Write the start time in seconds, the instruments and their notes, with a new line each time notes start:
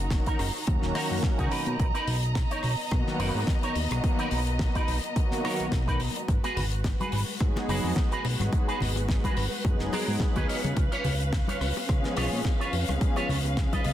Already playing: analog synth bass F#1, string section D#4 F#4 A#5
0.10 analog synth pad D#3 F#3 A#3 C#4 F#4, muted clean electric guitar stroke, kick, snare, closed hi-hat
0.26 clean electric guitar D#4 F#4 A#4, kick, closed hi-hat
0.39 analog synth bass F#1, cross-stick, open hi-hat
0.66 analog synth bass D#2, analog synth pad D#3 F#3 A#3 C#4 F#4, muted clean electric guitar stroke, kick, closed hi-hat
0.82 analog synth bass D#1, snare
0.95 clean electric guitar D#4 F#4 A#4, cross-stick, open hi-hat
1.11 analog synth bass F#2
1.23 kick, snare
1.38 analog synth bass C#2, clean electric guitar D#4 F#4 G#4, kick, closed hi-hat
1.51 analog synth bass B2, string section B3 D#5, clean electric guitar D#4 A#4 B4, open hi-hat
1.66 analog synth bass B2, closed hi-hat
1.80 analog synth bass B1, kick, closed hi-hat
1.94 clean electric guitar D#4 A#4 B4, closed hi-hat
2.07 analog synth bass B1, open hi-hat
2.23 closed hi-hat
2.35 muted clean electric guitar stroke, kick, snare, closed hi-hat
2.50 clean electric guitar D#4 A#4 C#5, closed hi-hat
2.63 analog synth bass B1, cross-stick, open hi-hat
2.91 analog synth bass B2, analog synth pad D#3 F#3 A#3 B3 F#4, muted clean electric guitar stroke, kick, cross-stick, closed hi-hat
3.07 snare
3.19 analog synth bass F#1, analog synth pad D#3 F#3 A#3 B3 F#4, clean electric guitar D#4 A#4 B4, open hi-hat
3.35 analog synth bass G#2, analog synth pad D#3 F#3 A#3 B3 F#4
3.47 kick, snare, closed hi-hat
3.63 clean electric guitar D#4 A#4 C#5, closed hi-hat
3.75 analog synth bass D#2, open hi-hat
3.91 analog synth bass B1, analog synth pad D#3 F#3 A#3 B3 F#4, muted clean electric guitar stroke, cross-stick, closed hi-hat
4.03 analog synth pad D#3 F#3 A#3 B3 F#4, kick, closed hi-hat
4.18 clean electric guitar D#4 A#4 B4, closed hi-hat
4.31 analog synth bass B1, open hi-hat
4.47 closed hi-hat
4.59 analog synth pad D#3 F#3 A#3 B3 F#4, muted clean electric guitar stroke, kick, snare, closed hi-hat
4.75 clean electric guitar D#4 A#4 B4, kick, closed hi-hat
4.88 analog synth bass B1, open hi-hat
5.04 closed hi-hat
5.16 analog synth pad D#3 F#3 A#3 B3 F#4, muted clean electric guitar stroke, kick, closed hi-hat
5.31 snare, closed hi-hat
5.43 analog synth pad D#3 F#3 A#3 B3 F#4, clean electric guitar D#4 A#4 C#5, cross-stick, open hi-hat
5.59 analog synth bass B1, closed hi-hat
5.72 analog synth bass B1, kick, snare, closed hi-hat
5.87 analog synth pad D#3 F#3 A#3 B3 F#4, clean electric guitar D#4 A#4 B4, kick, closed hi-hat
6.00 open hi-hat
6.16 muted clean electric guitar stroke, closed hi-hat
6.28 analog synth bass G#1, string section G#3 F#4 B4, kick, closed hi-hat
6.43 clean electric guitar F#4 G#4 B4, closed hi-hat, high bongo
6.56 analog synth bass G#1, open hi-hat, low conga
6.72 closed hi-hat
6.84 muted clean electric guitar stroke, kick, snare, closed hi-hat, high bongo
7.00 clean electric guitar F#4 G#4 B4, closed hi-hat, high conga
7.12 analog synth bass G#1, open hi-hat, high bongo
7.40 analog synth bass G#2, analog synth pad F#3 G#3 B3 D#4 G#4, muted clean electric guitar stroke, kick, cross-stick, closed hi-hat
7.56 snare, high bongo
7.68 analog synth bass F#1, analog synth pad F#3 G#3 B3 D#4 G#4, clean electric guitar F#4 G#4 B4, open hi-hat, high conga
7.83 analog synth bass F2, analog synth pad F#3 G#3 B3 D#4 G#4, high bongo
7.96 kick, snare, closed hi-hat
8.12 clean electric guitar F#4 G#4 B4, closed hi-hat
8.24 analog synth bass B1, open hi-hat, high bongo
8.39 analog synth bass G#1, analog synth pad F#3 G#3 B3 D#4 G#4, muted clean electric guitar stroke, cross-stick, closed hi-hat, high conga
8.52 analog synth pad F#3 G#3 B3 D#4 G#4, kick, closed hi-hat, high bongo
8.68 clean electric guitar F#4 G#4 B4, closed hi-hat
8.80 analog synth bass G#1, open hi-hat, low conga
8.96 closed hi-hat, high bongo
9.08 analog synth pad F#3 G#3 B3 D#4 G#4, muted clean electric guitar stroke, kick, snare, closed hi-hat
9.24 clean electric guitar F#4 G#4 B4, kick, closed hi-hat, high bongo, high conga
9.37 analog synth bass G#1, cross-stick, open hi-hat
9.63 analog synth bass F#2, analog synth pad F#3 G#3 B3 D#4 G#4, kick, closed hi-hat, high bongo
9.79 analog synth bass F#1, snare
9.92 clean electric guitar F#4 G#4 A#4, cross-stick, open hi-hat, high bongo, high conga
10.08 analog synth bass G#2
10.20 kick, snare
10.36 analog synth bass D#2, clean electric guitar F#4 G#4 B4, kick, closed hi-hat, high bongo
10.48 analog synth bass C#3, string section C#4 F5, clean electric guitar F4 B4 C#5, open hi-hat
10.64 analog synth bass C#3, closed hi-hat, high bongo, high conga
10.77 analog synth bass C#2, kick, closed hi-hat
10.92 clean electric guitar F4 B4 C#5, closed hi-hat
11.04 analog synth bass C#2, open hi-hat, high bongo, low conga
11.20 closed hi-hat
11.32 muted clean electric guitar stroke, kick, snare, closed hi-hat, high bongo
11.47 clean electric guitar F4 B4 C#5, closed hi-hat, high conga
11.61 analog synth bass C#2, cross-stick, open hi-hat
11.77 high bongo
11.88 analog synth bass C#3, analog synth pad F3 G#3 B3 C#4 G#4, muted clean electric guitar stroke, kick, cross-stick, closed hi-hat
12.04 snare, high bongo
12.16 analog synth bass B1, analog synth pad F3 G#3 B3 C#4 G#4, clean electric guitar F4 B4 C#5, open hi-hat, high conga
12.32 analog synth bass A#2, analog synth pad F3 G#3 B3 C#4 G#4
12.44 kick, snare, high bongo
12.60 clean electric guitar F4 B4 C#5, closed hi-hat
12.73 analog synth bass F2, open hi-hat, high bongo
12.88 analog synth bass C#2, analog synth pad F3 G#3 B3 C#4 G#4, muted clean electric guitar stroke, cross-stick, closed hi-hat, high conga
13.01 analog synth pad F3 G#3 B3 C#4 G#4, kick, closed hi-hat
13.16 clean electric guitar F4 B4 C#5, closed hi-hat, high bongo
13.29 analog synth bass C#2, open hi-hat, low conga
13.45 closed hi-hat, high bongo
13.56 analog synth pad F3 G#3 B3 C#4 G#4, muted clean electric guitar stroke, kick, snare, closed hi-hat
13.72 clean electric guitar F4 B4 D#5, kick, closed hi-hat, high conga
13.84 analog synth bass C#2, open hi-hat, high bongo